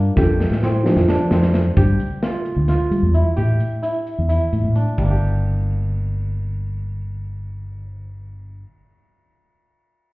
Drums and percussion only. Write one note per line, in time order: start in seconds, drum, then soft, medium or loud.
0.17 kick loud
0.17 snare medium
0.40 snare medium
0.52 snare soft
0.63 snare medium
0.86 snare medium
0.97 snare medium
1.09 snare medium
1.31 snare medium
1.42 snare medium
1.54 snare medium
1.77 kick medium
1.77 closed hi-hat medium
2.00 closed hi-hat medium
2.23 snare medium
2.23 closed hi-hat medium
2.45 closed hi-hat soft
2.68 snare soft
2.68 closed hi-hat medium
2.91 closed hi-hat soft
3.14 closed hi-hat soft
3.37 closed hi-hat medium
3.60 closed hi-hat soft
3.83 closed hi-hat medium
4.07 closed hi-hat soft
4.30 closed hi-hat medium
4.53 closed hi-hat soft
4.75 closed hi-hat soft
4.98 kick soft
4.98 ride medium